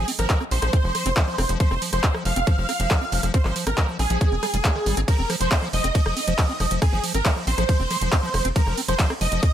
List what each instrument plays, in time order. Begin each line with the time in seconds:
0.08 acid bass C4, open hi-hat
0.19 analog synth bass G#1, acid bass F3, supersaw synth A#4, cross-stick, closed hi-hat
0.30 kick, clap, closed hi-hat
0.41 acid bass C4, cross-stick
0.51 analog synth bass A#1, acid bass F3, supersaw synth C5, open hi-hat
0.62 analog synth bass A#1, acid bass F3, cross-stick, closed hi-hat
0.73 acid bass C4, kick, closed hi-hat
0.84 analog synth bass F1, acid bass F3
0.95 acid bass F3, cross-stick, open hi-hat
1.06 analog synth bass F1, acid bass C4, closed hi-hat
1.17 acid bass F3, kick, cross-stick, clap, closed hi-hat
1.27 acid bass F3
1.38 analog synth bass F1, acid bass C4, cross-stick, open hi-hat
1.49 analog synth bass F1, acid bass F3, closed hi-hat
1.60 acid bass F3, supersaw synth C5, kick, closed hi-hat
1.71 analog synth bass F1, acid bass C4, cross-stick
1.82 acid bass F3, open hi-hat
1.93 analog synth bass F1, acid bass F3, supersaw synth C5, cross-stick, closed hi-hat
2.04 acid bass C4, kick, clap, closed hi-hat
2.14 acid bass F3, cross-stick
2.25 analog synth bass F1, acid bass F3, supersaw synth F5, open hi-hat
2.36 analog synth bass F1, acid bass C4, closed hi-hat
2.47 acid bass F3, kick, cross-stick, closed hi-hat
2.58 analog synth bass F1, acid bass F3
2.69 acid bass C4, cross-stick, open hi-hat
2.80 analog synth bass F1, acid bass F3, closed hi-hat
2.91 acid bass F3, kick, cross-stick, clap, closed hi-hat
3.01 acid bass C4
3.12 analog synth bass F1, acid bass F3, open hi-hat
3.23 analog synth bass F1, acid bass F3, cross-stick, closed hi-hat
3.34 acid bass C4, supersaw synth C5, kick, closed hi-hat
3.45 analog synth bass G#1, acid bass F3, cross-stick, clap
3.56 acid bass F3, open hi-hat
3.67 analog synth bass G#1, acid bass C4, supersaw synth A#4, cross-stick, closed hi-hat
3.78 acid bass F3, kick, clap, closed hi-hat
3.88 acid bass F3
3.99 analog synth bass A#1, acid bass C4, supersaw synth G#4, cross-stick, open hi-hat
4.10 analog synth bass A#1, acid bass F3, closed hi-hat
4.21 acid bass F3, kick, cross-stick, closed hi-hat
4.32 analog synth bass F1, acid bass C4
4.43 acid bass G3, cross-stick, open hi-hat
4.54 analog synth bass F1, acid bass G3, closed hi-hat
4.65 acid bass G#3, kick, clap, closed hi-hat
4.75 acid bass D#3, cross-stick
4.86 analog synth bass G#1, acid bass G3, open hi-hat
4.97 analog synth bass G#1, acid bass C4, cross-stick, closed hi-hat
5.08 acid bass F3, supersaw synth A#4, kick, cross-stick, closed hi-hat, ride
5.19 analog synth bass F1, acid bass C4
5.30 acid bass F3, cross-stick, open hi-hat
5.41 analog synth bass F1, acid bass F3, supersaw synth C5, closed hi-hat
5.51 acid bass C4, kick, clap, closed hi-hat, ride
5.62 acid bass F3, cross-stick
5.73 analog synth bass F1, acid bass F3, supersaw synth D#5, open hi-hat
5.84 analog synth bass F1, acid bass C4, cross-stick, closed hi-hat
5.95 acid bass F3, kick, closed hi-hat, ride
6.06 analog synth bass F1, acid bass F3, cross-stick
6.17 acid bass C4, open hi-hat
6.28 analog synth bass F1, acid bass F3, closed hi-hat
6.38 acid bass F3, kick, cross-stick, clap, closed hi-hat, ride
6.49 acid bass C4
6.60 analog synth bass F1, acid bass F3, cross-stick, open hi-hat
6.71 analog synth bass F1, acid bass F3, closed hi-hat
6.82 acid bass C4, supersaw synth G#4, kick, cross-stick, closed hi-hat, ride
6.93 analog synth bass G#1, acid bass F3
7.04 acid bass F3, open hi-hat
7.15 analog synth bass G#1, acid bass C4, supersaw synth A#4, cross-stick, closed hi-hat
7.25 acid bass F3, kick, clap, closed hi-hat, ride
7.36 acid bass F3, cross-stick
7.47 analog synth bass A#1, acid bass C4, supersaw synth C5, open hi-hat
7.58 analog synth bass A#1, acid bass F3, cross-stick, closed hi-hat
7.69 acid bass F3, kick, closed hi-hat, ride
7.80 analog synth bass F1, acid bass C4
7.91 acid bass F3, cross-stick, open hi-hat
8.01 analog synth bass F1, acid bass F3, closed hi-hat
8.12 acid bass C4, kick, cross-stick, clap, closed hi-hat, ride
8.23 acid bass F3
8.34 analog synth bass F1, acid bass F3, cross-stick, open hi-hat
8.45 analog synth bass F1, acid bass C4, closed hi-hat
8.56 acid bass F3, supersaw synth A#4, kick, closed hi-hat, ride
8.67 analog synth bass F1, acid bass F3, cross-stick
8.78 acid bass C4, open hi-hat
8.88 analog synth bass F1, acid bass F3, supersaw synth C5, cross-stick, closed hi-hat
8.99 acid bass F3, kick, clap, closed hi-hat, ride
9.10 acid bass C4, cross-stick
9.21 analog synth bass F1, acid bass F3, supersaw synth D#5, open hi-hat
9.32 analog synth bass F1, acid bass F3, closed hi-hat
9.43 acid bass C4, kick, cross-stick, closed hi-hat, ride